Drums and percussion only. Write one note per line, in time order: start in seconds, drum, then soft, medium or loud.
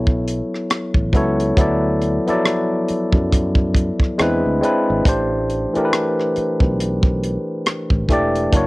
0.07 kick medium
0.28 closed hi-hat medium
0.54 cross-stick soft
0.70 cross-stick loud
0.70 closed hi-hat medium
0.94 kick medium
1.13 kick medium
1.13 cross-stick soft
1.13 closed hi-hat medium
1.40 closed hi-hat medium
1.57 kick loud
1.57 closed hi-hat medium
2.02 closed hi-hat medium
2.28 closed hi-hat soft
2.45 cross-stick loud
2.45 closed hi-hat medium
2.88 closed hi-hat medium
3.12 kick medium
3.32 kick medium
3.32 closed hi-hat medium
3.55 kick medium
3.75 kick medium
3.75 closed hi-hat medium
4.00 kick medium
4.00 cross-stick soft
4.19 cross-stick loud
4.19 closed hi-hat medium
4.63 closed hi-hat medium
5.05 kick loud
5.05 closed hi-hat medium
5.50 closed hi-hat soft
5.75 closed hi-hat soft
5.93 cross-stick loud
5.93 closed hi-hat medium
6.20 cross-stick soft
6.36 closed hi-hat medium
6.60 kick medium
6.80 closed hi-hat medium
7.03 kick medium
7.24 closed hi-hat medium
7.66 cross-stick loud
7.66 closed hi-hat medium
7.90 kick medium
8.09 kick medium
8.09 cross-stick soft
8.09 closed hi-hat medium
8.36 closed hi-hat soft
8.53 kick loud
8.53 closed hi-hat medium